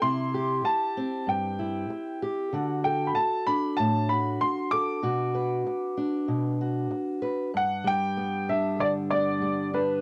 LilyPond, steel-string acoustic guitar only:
\new Staff \with { instrumentName = "Steel-string acoustic guitar" } { \time 4/4 \key g \major \tempo 4 = 96 << { e'8 g'4 c'4 e'4 g'8 | fis'8 a'4 d'4 fis'4 a'8 | fis'8 b'4 d'4 fis'4 b'8 | r4 b8 d'4 b4 d'8 | } \\ { c4 r4 g,4 r4 | d4 r4 a,4 r4 | b,4 r4 b,4 r4 | g,8 g4. d4 g4 | } >> }